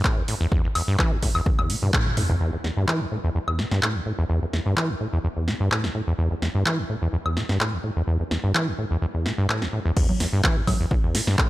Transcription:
0.04 kick, clap
0.17 D2
0.28 A2, open hi-hat
0.41 E2
0.52 E2, kick
0.64 E2
0.75 E2, open hi-hat, high woodblock
0.88 G2
0.99 E3, kick, clap
1.12 D2
1.22 A2, kick, open hi-hat
1.35 E2, high woodblock
1.46 E2, kick, high tom
1.59 E2, high tom, high woodblock
1.70 B2, open hi-hat
1.82 G2, mid tom
1.93 A2, kick, clap, mid tom
2.06 D2, mid tom
2.17 A2, mid tom, open hi-hat
2.30 E2, mid tom
2.41 E2
2.53 E2
2.64 E2, snare
2.77 G2
2.88 E3, clap
3.00 D2
3.11 A2
3.24 E2
3.35 E2
3.48 E2, high woodblock
3.59 B2, snare
3.71 G2, snare
3.82 A2, clap
3.95 D2
4.06 A2
4.19 E2
4.30 E2
4.42 E2
4.53 E2, snare
4.66 G2
4.77 E3, clap
4.89 D2
5.00 A2
5.13 E2
5.24 E2
5.37 E2
5.48 B2, snare
5.60 G2
5.71 A2, clap
5.84 D2, snare
5.95 A2
6.07 E2
6.18 E2
6.31 E2
6.42 E2, snare
6.55 G2
6.66 E3, clap
6.78 D2
6.89 A2
7.02 E2
7.13 E2
7.26 E2, high woodblock
7.37 B2, snare
7.49 G2, snare
7.60 A2, clap
7.73 D2
7.84 A2
7.96 E2
8.07 E2
8.20 E2
8.31 E2, snare
8.44 G2
8.55 E3, clap
8.67 D2
8.78 A2
8.91 E2
9.02 E2
9.15 E2
9.26 B2, snare
9.38 G2
9.49 A2, clap
9.62 D2, snare
9.73 A2
9.85 E2
9.96 E2, kick, crash
10.09 E2, low conga
10.20 E2, snare, open hi-hat
10.33 G2
10.44 E3, kick, clap
10.56 D2
10.67 A2, kick, open hi-hat, low conga, high woodblock
10.80 E2
10.91 E2, kick
11.04 E2
11.15 B2, snare, open hi-hat
11.27 G2, snare
11.38 A2, kick, clap

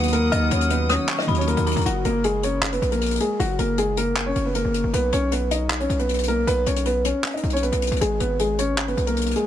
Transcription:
Already playing: D#2 D#3 F#3 A#3 B3 D#4 F#4 B4 D#5 F#5 D#6
0.03 closed hi-hat
0.08 closed hi-hat
0.12 A#3 A#4, closed hi-hat
0.32 D#2 D#4 D#5 F6, closed hi-hat
0.51 D#2 C#4 C#5, closed hi-hat, open hi-hat
0.61 closed hi-hat
0.70 B3 B4, closed hi-hat
0.89 C#4 C#5 D#6, cross-stick, closed hi-hat
1.09 C#6, clap, closed hi-hat
1.15 D#4 D#5, cross-stick, closed hi-hat
1.22 closed hi-hat
1.26 D#2 D#3 F#3 A#3 D#4 B5, closed hi-hat
1.30 F#4
1.34 C#5, closed hi-hat
1.39 C#4, closed hi-hat
1.47 A#3 A#4, closed hi-hat
1.57 D#2, closed hi-hat
1.67 A#5, closed hi-hat
1.71 closed hi-hat
1.76 D#2, closed hi-hat
1.81 closed hi-hat
1.86 F#1 F#3 F#4, closed hi-hat
2.05 F#1 A#3 A#4, closed hi-hat
2.24 G#3 G#4, closed hi-hat
2.43 C#4 C#5, closed hi-hat
2.63 clap, closed hi-hat
2.72 B3 B4, closed hi-hat
2.82 A#1, closed hi-hat
2.92 A#3 A#4, closed hi-hat
3.01 closed hi-hat
3.06 closed hi-hat
3.11 closed hi-hat
3.16 closed hi-hat
3.20 G#3 G#4, closed hi-hat
3.40 F#1 F#3 F#4, closed hi-hat
3.59 F#1 A#3 A#4, closed hi-hat
3.78 G#3 G#4, closed hi-hat
3.97 A#3 A#4, closed hi-hat
4.17 clap, closed hi-hat
4.26 C#4 C#5
4.36 F#1, closed hi-hat
4.45 B3 B4
4.55 A#3 A#4, closed hi-hat
4.65 F#1
4.74 closed hi-hat
4.84 F#1
4.93 B1 B3 B4, closed hi-hat
5.12 B1 C#4 C#5, closed hi-hat
5.32 B3 B4, closed hi-hat
5.51 D#4 D#5, closed hi-hat
5.70 clap, closed hi-hat
5.80 C#4 C#5, closed hi-hat
5.90 B1, closed hi-hat
5.99 B3 B4, closed hi-hat
6.09 closed hi-hat
6.14 closed hi-hat
6.18 closed hi-hat
6.23 closed hi-hat
6.28 A#3 A#4, closed hi-hat
6.47 B1 B3 B4, closed hi-hat
6.66 B1 C#4 C#5, closed hi-hat, open hi-hat
6.76 closed hi-hat
6.85 B3 B4, closed hi-hat
7.05 C#4 C#5, closed hi-hat
7.24 clap, closed hi-hat
7.31 D#5, closed hi-hat
7.35 D#4, closed hi-hat
7.43 B1, closed hi-hat
7.50 C#5, closed hi-hat
7.54 C#4, closed hi-hat
7.63 B3 B4, closed hi-hat
7.72 B1, closed hi-hat
7.82 closed hi-hat
7.87 closed hi-hat
7.92 B1, closed hi-hat
7.96 closed hi-hat
8.01 G#1 G#3 G#4, closed hi-hat
8.20 G#1 B3 B4, closed hi-hat
8.39 G#3 G#4, closed hi-hat
8.58 C#4 C#5, closed hi-hat
8.78 clap, closed hi-hat
8.88 B3 B4, closed hi-hat
8.97 B1, closed hi-hat
9.07 A#3 A#4, closed hi-hat
9.17 closed hi-hat
9.21 closed hi-hat
9.26 closed hi-hat
9.31 closed hi-hat
9.36 G#3 G#4, closed hi-hat

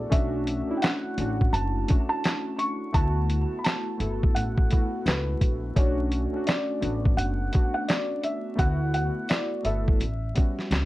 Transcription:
Already playing: A3 B3 E4 F#4 G#4 A4 D5
0.10 B1 A3 C#4 D4 F#4 E5, kick, closed hi-hat
0.47 closed hi-hat
0.67 A3 C#4 D4 E4
0.77 G5
0.82 F#5, snare, clap, closed hi-hat
1.18 A1 A3 C#4 D4 F#4, closed hi-hat
1.41 kick
1.53 F#1 A5, closed hi-hat
1.88 A3 C#4 D4 F#4, kick, closed hi-hat
2.09 A5
2.24 snare, clap, closed hi-hat
2.58 C#6, closed hi-hat
2.93 D2 A3 B3 E4 F#4 A5, kick, closed hi-hat
3.30 closed hi-hat
3.59 B5
3.64 A5, snare, clap, closed hi-hat
3.98 G1 A3 B3 E4 A4, closed hi-hat
4.23 kick
4.35 A1 F#5, closed hi-hat
4.57 kick
4.70 A3 B3 E4 F#4, kick, closed hi-hat
5.05 C#2 B4, snare, clap, closed hi-hat
5.41 A#1, kick, closed hi-hat
5.76 B1 A3 C#4 D4 F#4 C#5, kick, closed hi-hat
6.12 closed hi-hat
6.33 A3 C#4 D4 F#4
6.47 D5, snare, clap, closed hi-hat
6.80 A1 A3 B3 D4 F#4, closed hi-hat
7.05 kick
7.17 F#1 F#5, closed hi-hat
7.52 A3 B3 D4 F#4, kick, closed hi-hat
7.74 F#5
7.88 D5, snare, clap, closed hi-hat
8.23 E5, closed hi-hat
8.55 D2 A3 B3 E4 F#4 F#5, kick, closed hi-hat
8.94 F#5, closed hi-hat
9.29 D5, snare, clap, closed hi-hat
9.63 G1 A3 B3 E4 A4 E5, closed hi-hat
9.88 kick
10.00 A1, closed hi-hat
10.34 G3 B3 C#4 F#4, kick, closed hi-hat
10.59 snare
10.71 C#2, snare, clap, closed hi-hat

